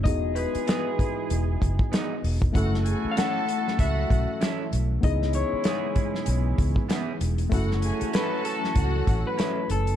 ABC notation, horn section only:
X:1
M:4/4
L:1/8
Q:"Swing 16ths" 1/4=96
K:F#dor
V:1 name="Horn section"
[G,EG]6- [G,EG] z | [A,EFA]6- [A,EFA] z | [G,CEG]6- [G,CEG] z | [F,A,CF]6- [F,A,CF] z |]